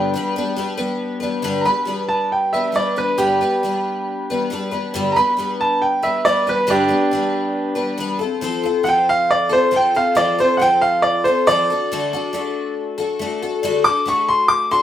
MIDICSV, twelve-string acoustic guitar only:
0, 0, Header, 1, 2, 480
1, 0, Start_track
1, 0, Key_signature, 1, "major"
1, 0, Tempo, 436999
1, 1580, Time_signature, 4, 2, 24, 8
1, 8783, Tempo, 433213
1, 16347, End_track
2, 0, Start_track
2, 0, Title_t, "Twelve-string acoustic guitar"
2, 0, Program_c, 0, 25
2, 0, Note_on_c, 0, 43, 82
2, 0, Note_on_c, 0, 50, 83
2, 0, Note_on_c, 0, 55, 77
2, 0, Note_on_c, 0, 59, 87
2, 0, Note_on_c, 0, 62, 83
2, 0, Note_on_c, 0, 71, 95
2, 136, Note_off_c, 0, 55, 0
2, 149, Note_off_c, 0, 43, 0
2, 149, Note_on_c, 0, 55, 61
2, 152, Note_off_c, 0, 50, 0
2, 158, Note_off_c, 0, 59, 0
2, 159, Note_off_c, 0, 71, 0
2, 160, Note_off_c, 0, 62, 0
2, 169, Note_on_c, 0, 59, 71
2, 178, Note_on_c, 0, 62, 72
2, 187, Note_on_c, 0, 71, 74
2, 383, Note_off_c, 0, 71, 0
2, 385, Note_off_c, 0, 55, 0
2, 395, Note_off_c, 0, 59, 0
2, 396, Note_on_c, 0, 71, 70
2, 399, Note_off_c, 0, 62, 0
2, 418, Note_on_c, 0, 59, 57
2, 420, Note_on_c, 0, 62, 65
2, 425, Note_on_c, 0, 55, 58
2, 606, Note_off_c, 0, 55, 0
2, 619, Note_on_c, 0, 55, 68
2, 623, Note_off_c, 0, 62, 0
2, 625, Note_off_c, 0, 59, 0
2, 628, Note_off_c, 0, 71, 0
2, 636, Note_on_c, 0, 62, 64
2, 638, Note_on_c, 0, 59, 62
2, 645, Note_on_c, 0, 71, 65
2, 838, Note_off_c, 0, 71, 0
2, 843, Note_off_c, 0, 62, 0
2, 851, Note_on_c, 0, 71, 68
2, 855, Note_off_c, 0, 59, 0
2, 856, Note_on_c, 0, 62, 56
2, 860, Note_off_c, 0, 55, 0
2, 868, Note_on_c, 0, 59, 61
2, 883, Note_on_c, 0, 55, 51
2, 1305, Note_off_c, 0, 71, 0
2, 1319, Note_on_c, 0, 71, 52
2, 1333, Note_off_c, 0, 62, 0
2, 1341, Note_off_c, 0, 59, 0
2, 1346, Note_off_c, 0, 55, 0
2, 1346, Note_on_c, 0, 62, 59
2, 1354, Note_on_c, 0, 59, 50
2, 1359, Note_on_c, 0, 55, 53
2, 1562, Note_on_c, 0, 43, 78
2, 1566, Note_on_c, 0, 50, 77
2, 1568, Note_off_c, 0, 55, 0
2, 1569, Note_off_c, 0, 71, 0
2, 1570, Note_off_c, 0, 59, 0
2, 1576, Note_off_c, 0, 62, 0
2, 1581, Note_on_c, 0, 55, 75
2, 1583, Note_on_c, 0, 59, 83
2, 1586, Note_on_c, 0, 71, 91
2, 1589, Note_on_c, 0, 62, 81
2, 1802, Note_off_c, 0, 71, 0
2, 1805, Note_off_c, 0, 62, 0
2, 1811, Note_off_c, 0, 43, 0
2, 1813, Note_off_c, 0, 50, 0
2, 1815, Note_on_c, 0, 71, 50
2, 1818, Note_on_c, 0, 62, 48
2, 1820, Note_off_c, 0, 55, 0
2, 1821, Note_off_c, 0, 59, 0
2, 1834, Note_on_c, 0, 59, 46
2, 1838, Note_on_c, 0, 55, 39
2, 2022, Note_off_c, 0, 55, 0
2, 2035, Note_on_c, 0, 55, 51
2, 2040, Note_off_c, 0, 59, 0
2, 2048, Note_off_c, 0, 62, 0
2, 2053, Note_on_c, 0, 59, 61
2, 2058, Note_off_c, 0, 71, 0
2, 2062, Note_on_c, 0, 62, 58
2, 2069, Note_on_c, 0, 71, 64
2, 2768, Note_off_c, 0, 55, 0
2, 2772, Note_off_c, 0, 71, 0
2, 2778, Note_off_c, 0, 59, 0
2, 2778, Note_off_c, 0, 62, 0
2, 2785, Note_on_c, 0, 71, 53
2, 2791, Note_on_c, 0, 62, 54
2, 2804, Note_on_c, 0, 59, 43
2, 2814, Note_on_c, 0, 55, 48
2, 2975, Note_off_c, 0, 55, 0
2, 2988, Note_on_c, 0, 55, 54
2, 2994, Note_off_c, 0, 59, 0
2, 3006, Note_off_c, 0, 62, 0
2, 3007, Note_on_c, 0, 59, 62
2, 3012, Note_off_c, 0, 71, 0
2, 3019, Note_on_c, 0, 62, 64
2, 3025, Note_on_c, 0, 71, 65
2, 3241, Note_off_c, 0, 71, 0
2, 3245, Note_off_c, 0, 55, 0
2, 3245, Note_off_c, 0, 62, 0
2, 3254, Note_on_c, 0, 71, 50
2, 3255, Note_off_c, 0, 59, 0
2, 3259, Note_on_c, 0, 62, 48
2, 3274, Note_on_c, 0, 59, 41
2, 3288, Note_on_c, 0, 55, 38
2, 3484, Note_off_c, 0, 55, 0
2, 3485, Note_off_c, 0, 59, 0
2, 3489, Note_on_c, 0, 43, 78
2, 3490, Note_on_c, 0, 50, 74
2, 3493, Note_off_c, 0, 62, 0
2, 3495, Note_off_c, 0, 71, 0
2, 3497, Note_on_c, 0, 55, 80
2, 3498, Note_on_c, 0, 59, 71
2, 3506, Note_on_c, 0, 62, 74
2, 3508, Note_on_c, 0, 71, 77
2, 3731, Note_off_c, 0, 71, 0
2, 3736, Note_off_c, 0, 43, 0
2, 3737, Note_off_c, 0, 50, 0
2, 3740, Note_off_c, 0, 55, 0
2, 3741, Note_off_c, 0, 59, 0
2, 3742, Note_off_c, 0, 62, 0
2, 3744, Note_on_c, 0, 71, 54
2, 3755, Note_on_c, 0, 62, 50
2, 3765, Note_on_c, 0, 59, 50
2, 3775, Note_on_c, 0, 55, 45
2, 3975, Note_off_c, 0, 55, 0
2, 3984, Note_off_c, 0, 71, 0
2, 3988, Note_on_c, 0, 55, 58
2, 3989, Note_off_c, 0, 59, 0
2, 3990, Note_off_c, 0, 62, 0
2, 4002, Note_on_c, 0, 59, 61
2, 4008, Note_on_c, 0, 62, 59
2, 4018, Note_on_c, 0, 71, 65
2, 4707, Note_off_c, 0, 55, 0
2, 4710, Note_off_c, 0, 71, 0
2, 4715, Note_off_c, 0, 59, 0
2, 4717, Note_off_c, 0, 62, 0
2, 4723, Note_on_c, 0, 71, 64
2, 4736, Note_on_c, 0, 62, 54
2, 4743, Note_on_c, 0, 59, 55
2, 4758, Note_on_c, 0, 55, 47
2, 4931, Note_off_c, 0, 55, 0
2, 4944, Note_on_c, 0, 55, 66
2, 4949, Note_off_c, 0, 59, 0
2, 4954, Note_off_c, 0, 71, 0
2, 4957, Note_off_c, 0, 62, 0
2, 4962, Note_on_c, 0, 59, 62
2, 4970, Note_on_c, 0, 62, 74
2, 4980, Note_on_c, 0, 71, 75
2, 5164, Note_off_c, 0, 71, 0
2, 5175, Note_off_c, 0, 62, 0
2, 5177, Note_on_c, 0, 71, 60
2, 5185, Note_off_c, 0, 55, 0
2, 5185, Note_off_c, 0, 59, 0
2, 5188, Note_on_c, 0, 62, 51
2, 5198, Note_on_c, 0, 59, 49
2, 5210, Note_on_c, 0, 55, 45
2, 5422, Note_off_c, 0, 71, 0
2, 5424, Note_on_c, 0, 43, 78
2, 5426, Note_on_c, 0, 50, 90
2, 5427, Note_off_c, 0, 62, 0
2, 5428, Note_off_c, 0, 55, 0
2, 5429, Note_off_c, 0, 59, 0
2, 5440, Note_on_c, 0, 62, 93
2, 5441, Note_on_c, 0, 55, 97
2, 5442, Note_on_c, 0, 59, 75
2, 5451, Note_on_c, 0, 71, 96
2, 5655, Note_off_c, 0, 71, 0
2, 5665, Note_off_c, 0, 43, 0
2, 5667, Note_off_c, 0, 50, 0
2, 5669, Note_on_c, 0, 71, 51
2, 5674, Note_off_c, 0, 55, 0
2, 5674, Note_off_c, 0, 62, 0
2, 5675, Note_off_c, 0, 59, 0
2, 5690, Note_on_c, 0, 62, 49
2, 5691, Note_on_c, 0, 59, 49
2, 5701, Note_on_c, 0, 55, 47
2, 5883, Note_off_c, 0, 55, 0
2, 5896, Note_on_c, 0, 55, 58
2, 5900, Note_off_c, 0, 59, 0
2, 5908, Note_off_c, 0, 71, 0
2, 5910, Note_off_c, 0, 62, 0
2, 5913, Note_on_c, 0, 59, 60
2, 5923, Note_on_c, 0, 62, 66
2, 5926, Note_on_c, 0, 71, 69
2, 6605, Note_off_c, 0, 71, 0
2, 6619, Note_on_c, 0, 71, 58
2, 6621, Note_off_c, 0, 62, 0
2, 6622, Note_off_c, 0, 55, 0
2, 6630, Note_off_c, 0, 59, 0
2, 6634, Note_on_c, 0, 62, 51
2, 6646, Note_on_c, 0, 59, 45
2, 6656, Note_on_c, 0, 55, 44
2, 6856, Note_off_c, 0, 55, 0
2, 6863, Note_off_c, 0, 59, 0
2, 6863, Note_off_c, 0, 71, 0
2, 6869, Note_on_c, 0, 55, 58
2, 6870, Note_off_c, 0, 62, 0
2, 6876, Note_on_c, 0, 59, 62
2, 6887, Note_on_c, 0, 62, 65
2, 6900, Note_on_c, 0, 71, 63
2, 7090, Note_off_c, 0, 62, 0
2, 7094, Note_off_c, 0, 71, 0
2, 7103, Note_on_c, 0, 62, 45
2, 7105, Note_off_c, 0, 59, 0
2, 7107, Note_on_c, 0, 71, 50
2, 7108, Note_off_c, 0, 55, 0
2, 7119, Note_on_c, 0, 59, 39
2, 7125, Note_on_c, 0, 55, 45
2, 7320, Note_off_c, 0, 55, 0
2, 7321, Note_off_c, 0, 62, 0
2, 7324, Note_off_c, 0, 59, 0
2, 7324, Note_on_c, 0, 50, 74
2, 7328, Note_off_c, 0, 71, 0
2, 7328, Note_on_c, 0, 43, 69
2, 7333, Note_on_c, 0, 55, 76
2, 7334, Note_on_c, 0, 62, 80
2, 7337, Note_on_c, 0, 59, 82
2, 7341, Note_on_c, 0, 71, 84
2, 7549, Note_off_c, 0, 71, 0
2, 7556, Note_off_c, 0, 62, 0
2, 7562, Note_on_c, 0, 71, 56
2, 7570, Note_on_c, 0, 62, 49
2, 7571, Note_off_c, 0, 59, 0
2, 7575, Note_off_c, 0, 50, 0
2, 7575, Note_off_c, 0, 55, 0
2, 7577, Note_off_c, 0, 43, 0
2, 7584, Note_on_c, 0, 59, 46
2, 7589, Note_on_c, 0, 55, 45
2, 7800, Note_off_c, 0, 55, 0
2, 7813, Note_on_c, 0, 55, 56
2, 7814, Note_off_c, 0, 71, 0
2, 7816, Note_off_c, 0, 59, 0
2, 7818, Note_off_c, 0, 62, 0
2, 7829, Note_on_c, 0, 59, 59
2, 7829, Note_on_c, 0, 62, 65
2, 7852, Note_on_c, 0, 71, 66
2, 8501, Note_off_c, 0, 71, 0
2, 8509, Note_off_c, 0, 62, 0
2, 8514, Note_on_c, 0, 71, 60
2, 8519, Note_off_c, 0, 59, 0
2, 8522, Note_on_c, 0, 62, 58
2, 8532, Note_on_c, 0, 59, 52
2, 8538, Note_off_c, 0, 55, 0
2, 8549, Note_on_c, 0, 55, 45
2, 8747, Note_off_c, 0, 55, 0
2, 8753, Note_off_c, 0, 59, 0
2, 8760, Note_on_c, 0, 55, 67
2, 8766, Note_on_c, 0, 59, 71
2, 8769, Note_off_c, 0, 71, 0
2, 8772, Note_off_c, 0, 62, 0
2, 8790, Note_on_c, 0, 62, 77
2, 8796, Note_on_c, 0, 71, 77
2, 8993, Note_off_c, 0, 71, 0
2, 8998, Note_on_c, 0, 69, 56
2, 9013, Note_off_c, 0, 55, 0
2, 9016, Note_off_c, 0, 59, 0
2, 9016, Note_off_c, 0, 62, 0
2, 9020, Note_on_c, 0, 65, 49
2, 9039, Note_on_c, 0, 60, 45
2, 9241, Note_off_c, 0, 60, 0
2, 9244, Note_on_c, 0, 53, 77
2, 9249, Note_off_c, 0, 65, 0
2, 9252, Note_off_c, 0, 69, 0
2, 9254, Note_on_c, 0, 60, 86
2, 9263, Note_on_c, 0, 65, 80
2, 9275, Note_on_c, 0, 69, 93
2, 9476, Note_off_c, 0, 69, 0
2, 9489, Note_on_c, 0, 69, 58
2, 9496, Note_off_c, 0, 53, 0
2, 9498, Note_off_c, 0, 65, 0
2, 9501, Note_off_c, 0, 60, 0
2, 9512, Note_on_c, 0, 65, 51
2, 9518, Note_on_c, 0, 60, 53
2, 9711, Note_on_c, 0, 53, 57
2, 9716, Note_off_c, 0, 60, 0
2, 9729, Note_on_c, 0, 60, 57
2, 9731, Note_off_c, 0, 69, 0
2, 9734, Note_off_c, 0, 65, 0
2, 9744, Note_on_c, 0, 69, 68
2, 9748, Note_on_c, 0, 65, 66
2, 10437, Note_off_c, 0, 69, 0
2, 10442, Note_on_c, 0, 69, 56
2, 10445, Note_off_c, 0, 65, 0
2, 10452, Note_off_c, 0, 53, 0
2, 10458, Note_on_c, 0, 65, 55
2, 10461, Note_off_c, 0, 60, 0
2, 10476, Note_on_c, 0, 60, 43
2, 10675, Note_off_c, 0, 60, 0
2, 10682, Note_on_c, 0, 53, 61
2, 10688, Note_off_c, 0, 65, 0
2, 10689, Note_on_c, 0, 60, 66
2, 10697, Note_off_c, 0, 69, 0
2, 10701, Note_on_c, 0, 65, 66
2, 10711, Note_on_c, 0, 69, 69
2, 10929, Note_off_c, 0, 69, 0
2, 10937, Note_off_c, 0, 53, 0
2, 10937, Note_off_c, 0, 65, 0
2, 10941, Note_off_c, 0, 60, 0
2, 10942, Note_on_c, 0, 69, 46
2, 10950, Note_on_c, 0, 65, 50
2, 10959, Note_on_c, 0, 60, 42
2, 11170, Note_off_c, 0, 60, 0
2, 11170, Note_on_c, 0, 53, 76
2, 11173, Note_off_c, 0, 65, 0
2, 11181, Note_off_c, 0, 69, 0
2, 11183, Note_on_c, 0, 60, 75
2, 11187, Note_on_c, 0, 65, 81
2, 11194, Note_on_c, 0, 69, 74
2, 11416, Note_off_c, 0, 69, 0
2, 11421, Note_off_c, 0, 53, 0
2, 11428, Note_off_c, 0, 60, 0
2, 11429, Note_on_c, 0, 69, 59
2, 11430, Note_off_c, 0, 65, 0
2, 11448, Note_on_c, 0, 65, 54
2, 11459, Note_on_c, 0, 60, 50
2, 11663, Note_on_c, 0, 53, 60
2, 11669, Note_off_c, 0, 60, 0
2, 11671, Note_off_c, 0, 69, 0
2, 11681, Note_off_c, 0, 65, 0
2, 11682, Note_on_c, 0, 60, 65
2, 11695, Note_on_c, 0, 65, 69
2, 11703, Note_on_c, 0, 69, 65
2, 12387, Note_off_c, 0, 69, 0
2, 12388, Note_off_c, 0, 53, 0
2, 12391, Note_on_c, 0, 69, 57
2, 12398, Note_off_c, 0, 60, 0
2, 12400, Note_off_c, 0, 65, 0
2, 12413, Note_on_c, 0, 65, 51
2, 12423, Note_on_c, 0, 60, 50
2, 12629, Note_on_c, 0, 53, 61
2, 12632, Note_off_c, 0, 69, 0
2, 12636, Note_off_c, 0, 60, 0
2, 12643, Note_off_c, 0, 65, 0
2, 12650, Note_on_c, 0, 60, 62
2, 12661, Note_on_c, 0, 65, 67
2, 12673, Note_on_c, 0, 69, 75
2, 12871, Note_off_c, 0, 53, 0
2, 12874, Note_off_c, 0, 69, 0
2, 12881, Note_off_c, 0, 60, 0
2, 12887, Note_off_c, 0, 65, 0
2, 12888, Note_on_c, 0, 69, 52
2, 12908, Note_on_c, 0, 66, 45
2, 12920, Note_on_c, 0, 62, 43
2, 13120, Note_off_c, 0, 69, 0
2, 13126, Note_on_c, 0, 50, 75
2, 13127, Note_off_c, 0, 62, 0
2, 13127, Note_off_c, 0, 66, 0
2, 13135, Note_on_c, 0, 57, 79
2, 13140, Note_on_c, 0, 62, 85
2, 13140, Note_on_c, 0, 66, 81
2, 13145, Note_on_c, 0, 69, 81
2, 13352, Note_off_c, 0, 69, 0
2, 13359, Note_off_c, 0, 50, 0
2, 13364, Note_off_c, 0, 57, 0
2, 13365, Note_on_c, 0, 69, 60
2, 13366, Note_off_c, 0, 62, 0
2, 13366, Note_off_c, 0, 66, 0
2, 13380, Note_on_c, 0, 66, 63
2, 13399, Note_on_c, 0, 62, 55
2, 13582, Note_off_c, 0, 62, 0
2, 13583, Note_on_c, 0, 57, 66
2, 13588, Note_off_c, 0, 66, 0
2, 13595, Note_on_c, 0, 62, 72
2, 13598, Note_off_c, 0, 69, 0
2, 13602, Note_on_c, 0, 66, 80
2, 13616, Note_on_c, 0, 69, 70
2, 14290, Note_off_c, 0, 69, 0
2, 14303, Note_on_c, 0, 69, 66
2, 14306, Note_off_c, 0, 57, 0
2, 14311, Note_off_c, 0, 66, 0
2, 14324, Note_on_c, 0, 66, 62
2, 14337, Note_off_c, 0, 62, 0
2, 14341, Note_on_c, 0, 62, 49
2, 14542, Note_on_c, 0, 57, 76
2, 14546, Note_off_c, 0, 69, 0
2, 14552, Note_off_c, 0, 62, 0
2, 14556, Note_off_c, 0, 66, 0
2, 14565, Note_on_c, 0, 62, 80
2, 14569, Note_on_c, 0, 66, 74
2, 14581, Note_on_c, 0, 69, 74
2, 14783, Note_off_c, 0, 69, 0
2, 14785, Note_off_c, 0, 57, 0
2, 14789, Note_off_c, 0, 66, 0
2, 14796, Note_off_c, 0, 62, 0
2, 14797, Note_on_c, 0, 69, 58
2, 14802, Note_on_c, 0, 66, 53
2, 14822, Note_on_c, 0, 62, 48
2, 15025, Note_on_c, 0, 50, 81
2, 15029, Note_off_c, 0, 62, 0
2, 15032, Note_off_c, 0, 69, 0
2, 15034, Note_off_c, 0, 66, 0
2, 15035, Note_on_c, 0, 57, 87
2, 15042, Note_on_c, 0, 62, 80
2, 15046, Note_on_c, 0, 66, 102
2, 15048, Note_on_c, 0, 69, 101
2, 15246, Note_off_c, 0, 69, 0
2, 15257, Note_off_c, 0, 66, 0
2, 15259, Note_on_c, 0, 69, 58
2, 15265, Note_off_c, 0, 50, 0
2, 15270, Note_off_c, 0, 57, 0
2, 15270, Note_on_c, 0, 66, 55
2, 15274, Note_off_c, 0, 62, 0
2, 15295, Note_on_c, 0, 62, 45
2, 15496, Note_on_c, 0, 57, 60
2, 15498, Note_off_c, 0, 62, 0
2, 15502, Note_off_c, 0, 69, 0
2, 15507, Note_off_c, 0, 66, 0
2, 15511, Note_on_c, 0, 62, 69
2, 15523, Note_on_c, 0, 66, 70
2, 15531, Note_on_c, 0, 69, 69
2, 16211, Note_off_c, 0, 69, 0
2, 16218, Note_off_c, 0, 57, 0
2, 16224, Note_on_c, 0, 69, 61
2, 16225, Note_off_c, 0, 62, 0
2, 16229, Note_off_c, 0, 66, 0
2, 16242, Note_on_c, 0, 66, 59
2, 16261, Note_on_c, 0, 62, 47
2, 16347, Note_off_c, 0, 62, 0
2, 16347, Note_off_c, 0, 66, 0
2, 16347, Note_off_c, 0, 69, 0
2, 16347, End_track
0, 0, End_of_file